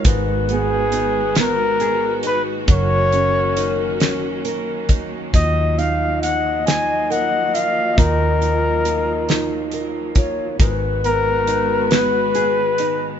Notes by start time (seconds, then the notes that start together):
Already playing: D#3 G#3 D#4 F4 A#4
0.05 G#1 G#2 B3 F#4 B4, kick, closed hi-hat
0.49 B3 G#4, closed hi-hat
0.92 D#4, closed hi-hat
1.35 B3 A#4, snare, closed hi-hat
1.80 G#4, closed hi-hat
2.23 D#4 B4, closed hi-hat
2.68 F#1 F#3 A#3 C#4 A#4 C#5, kick, closed hi-hat
3.12 C#4, closed hi-hat
3.57 D#4, closed hi-hat
4.00 C#4, snare, closed hi-hat
4.45 A#4, closed hi-hat
4.89 D#4, kick, closed hi-hat
5.33 D#2 D#3 F3 F#3 D#5, kick, closed hi-hat
5.78 D#4 F5, closed hi-hat
6.22 F#5, closed hi-hat
6.66 D#4 G#5, snare, closed hi-hat
7.10 A#4 F#5, closed hi-hat
7.54 F4 F5, closed hi-hat
7.98 D#2 D#3 A#4, kick, closed hi-hat
8.41 D#4, closed hi-hat
8.85 F4, closed hi-hat
9.29 D#4, snare, closed hi-hat
9.72 A#4, closed hi-hat
10.15 F4 C#5, kick, closed hi-hat
10.59 G#1 G#2 D#3 G#3 B3 F#4 B4, kick, closed hi-hat
11.04 B3 A#4, closed hi-hat
11.47 D#4, closed hi-hat
11.91 B3 B4, snare, closed hi-hat
12.35 G#4, closed hi-hat
12.78 D#4, closed hi-hat